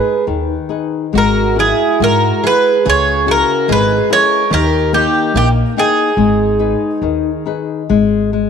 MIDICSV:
0, 0, Header, 1, 5, 480
1, 0, Start_track
1, 0, Key_signature, 5, "minor"
1, 0, Tempo, 860832
1, 635, Time_signature, 2, 2, 24, 8
1, 1593, Tempo, 832178
1, 3993, Tempo, 874636
1, 4805, End_track
2, 0, Start_track
2, 0, Title_t, "Bouzouki"
2, 0, Program_c, 0, 25
2, 0, Note_on_c, 0, 71, 81
2, 137, Note_off_c, 0, 71, 0
2, 656, Note_on_c, 0, 70, 74
2, 873, Note_off_c, 0, 70, 0
2, 891, Note_on_c, 0, 68, 70
2, 1133, Note_off_c, 0, 68, 0
2, 1135, Note_on_c, 0, 70, 75
2, 1373, Note_off_c, 0, 70, 0
2, 1375, Note_on_c, 0, 71, 87
2, 1609, Note_off_c, 0, 71, 0
2, 1615, Note_on_c, 0, 73, 93
2, 1853, Note_off_c, 0, 73, 0
2, 1856, Note_on_c, 0, 70, 86
2, 2090, Note_off_c, 0, 70, 0
2, 2093, Note_on_c, 0, 71, 83
2, 2308, Note_off_c, 0, 71, 0
2, 2325, Note_on_c, 0, 73, 101
2, 2560, Note_off_c, 0, 73, 0
2, 2563, Note_on_c, 0, 70, 90
2, 2794, Note_off_c, 0, 70, 0
2, 2797, Note_on_c, 0, 67, 79
2, 3037, Note_off_c, 0, 67, 0
2, 3044, Note_on_c, 0, 67, 78
2, 3106, Note_off_c, 0, 67, 0
2, 3287, Note_on_c, 0, 68, 81
2, 4222, Note_off_c, 0, 68, 0
2, 4805, End_track
3, 0, Start_track
3, 0, Title_t, "Twelve-string acoustic guitar"
3, 0, Program_c, 1, 25
3, 0, Note_on_c, 1, 68, 73
3, 132, Note_off_c, 1, 68, 0
3, 643, Note_on_c, 1, 66, 62
3, 866, Note_off_c, 1, 66, 0
3, 887, Note_on_c, 1, 64, 56
3, 1108, Note_off_c, 1, 64, 0
3, 1127, Note_on_c, 1, 66, 68
3, 1346, Note_off_c, 1, 66, 0
3, 1358, Note_on_c, 1, 68, 69
3, 1577, Note_off_c, 1, 68, 0
3, 1593, Note_on_c, 1, 68, 76
3, 1818, Note_off_c, 1, 68, 0
3, 1838, Note_on_c, 1, 66, 71
3, 2061, Note_off_c, 1, 66, 0
3, 2073, Note_on_c, 1, 68, 73
3, 2298, Note_off_c, 1, 68, 0
3, 2327, Note_on_c, 1, 70, 82
3, 2543, Note_off_c, 1, 70, 0
3, 2556, Note_on_c, 1, 67, 80
3, 2775, Note_off_c, 1, 67, 0
3, 2797, Note_on_c, 1, 63, 64
3, 3015, Note_off_c, 1, 63, 0
3, 3035, Note_on_c, 1, 63, 65
3, 3099, Note_off_c, 1, 63, 0
3, 3281, Note_on_c, 1, 63, 58
3, 4219, Note_off_c, 1, 63, 0
3, 4805, End_track
4, 0, Start_track
4, 0, Title_t, "Nylon-string guitar"
4, 0, Program_c, 2, 24
4, 0, Note_on_c, 2, 56, 60
4, 0, Note_on_c, 2, 63, 43
4, 0, Note_on_c, 2, 68, 38
4, 0, Note_on_c, 2, 71, 47
4, 139, Note_off_c, 2, 56, 0
4, 151, Note_on_c, 2, 51, 53
4, 293, Note_off_c, 2, 63, 0
4, 295, Note_off_c, 2, 68, 0
4, 295, Note_off_c, 2, 71, 0
4, 385, Note_on_c, 2, 63, 39
4, 387, Note_on_c, 2, 68, 36
4, 392, Note_on_c, 2, 71, 39
4, 582, Note_off_c, 2, 63, 0
4, 584, Note_off_c, 2, 68, 0
4, 587, Note_off_c, 2, 71, 0
4, 621, Note_off_c, 2, 51, 0
4, 629, Note_on_c, 2, 56, 50
4, 870, Note_on_c, 2, 64, 42
4, 872, Note_on_c, 2, 66, 39
4, 874, Note_on_c, 2, 68, 46
4, 1102, Note_off_c, 2, 56, 0
4, 1116, Note_on_c, 2, 56, 58
4, 1257, Note_off_c, 2, 64, 0
4, 1258, Note_off_c, 2, 66, 0
4, 1259, Note_off_c, 2, 68, 0
4, 1357, Note_on_c, 2, 66, 41
4, 1358, Note_on_c, 2, 64, 44
4, 1361, Note_on_c, 2, 68, 47
4, 1546, Note_off_c, 2, 64, 0
4, 1546, Note_off_c, 2, 66, 0
4, 1548, Note_off_c, 2, 68, 0
4, 1577, Note_off_c, 2, 56, 0
4, 1590, Note_on_c, 2, 49, 63
4, 1826, Note_on_c, 2, 61, 46
4, 1830, Note_on_c, 2, 64, 43
4, 1831, Note_on_c, 2, 68, 51
4, 2060, Note_off_c, 2, 49, 0
4, 2068, Note_on_c, 2, 56, 65
4, 2215, Note_off_c, 2, 61, 0
4, 2216, Note_off_c, 2, 64, 0
4, 2218, Note_off_c, 2, 68, 0
4, 2309, Note_on_c, 2, 61, 46
4, 2312, Note_on_c, 2, 68, 53
4, 2313, Note_on_c, 2, 64, 43
4, 2502, Note_off_c, 2, 61, 0
4, 2503, Note_off_c, 2, 64, 0
4, 2504, Note_off_c, 2, 68, 0
4, 2535, Note_off_c, 2, 56, 0
4, 2543, Note_on_c, 2, 51, 66
4, 2788, Note_on_c, 2, 58, 48
4, 2788, Note_on_c, 2, 63, 46
4, 2792, Note_on_c, 2, 67, 56
4, 3009, Note_off_c, 2, 51, 0
4, 3025, Note_off_c, 2, 58, 0
4, 3032, Note_on_c, 2, 58, 63
4, 3170, Note_off_c, 2, 63, 0
4, 3171, Note_off_c, 2, 67, 0
4, 3264, Note_off_c, 2, 58, 0
4, 3271, Note_on_c, 2, 58, 45
4, 3275, Note_on_c, 2, 63, 42
4, 3277, Note_on_c, 2, 79, 51
4, 3459, Note_off_c, 2, 58, 0
4, 3463, Note_off_c, 2, 63, 0
4, 3463, Note_off_c, 2, 79, 0
4, 3510, Note_on_c, 2, 56, 58
4, 3748, Note_on_c, 2, 63, 42
4, 3750, Note_on_c, 2, 68, 41
4, 3753, Note_on_c, 2, 71, 47
4, 3982, Note_off_c, 2, 56, 0
4, 3998, Note_on_c, 2, 51, 53
4, 4140, Note_off_c, 2, 63, 0
4, 4141, Note_off_c, 2, 68, 0
4, 4143, Note_off_c, 2, 71, 0
4, 4234, Note_on_c, 2, 63, 37
4, 4237, Note_on_c, 2, 68, 35
4, 4240, Note_on_c, 2, 71, 45
4, 4427, Note_off_c, 2, 63, 0
4, 4429, Note_off_c, 2, 68, 0
4, 4430, Note_off_c, 2, 71, 0
4, 4463, Note_off_c, 2, 51, 0
4, 4475, Note_on_c, 2, 56, 61
4, 4707, Note_off_c, 2, 56, 0
4, 4713, Note_on_c, 2, 56, 47
4, 4805, Note_off_c, 2, 56, 0
4, 4805, End_track
5, 0, Start_track
5, 0, Title_t, "Upright bass"
5, 0, Program_c, 3, 32
5, 153, Note_on_c, 3, 39, 75
5, 309, Note_off_c, 3, 39, 0
5, 634, Note_on_c, 3, 32, 81
5, 949, Note_off_c, 3, 32, 0
5, 1115, Note_on_c, 3, 44, 74
5, 1272, Note_off_c, 3, 44, 0
5, 1595, Note_on_c, 3, 37, 90
5, 1909, Note_off_c, 3, 37, 0
5, 2075, Note_on_c, 3, 32, 86
5, 2231, Note_off_c, 3, 32, 0
5, 2547, Note_on_c, 3, 39, 105
5, 2858, Note_off_c, 3, 39, 0
5, 3026, Note_on_c, 3, 34, 80
5, 3182, Note_off_c, 3, 34, 0
5, 3503, Note_on_c, 3, 32, 89
5, 3822, Note_off_c, 3, 32, 0
5, 3992, Note_on_c, 3, 39, 71
5, 4149, Note_off_c, 3, 39, 0
5, 4477, Note_on_c, 3, 32, 79
5, 4786, Note_off_c, 3, 32, 0
5, 4805, End_track
0, 0, End_of_file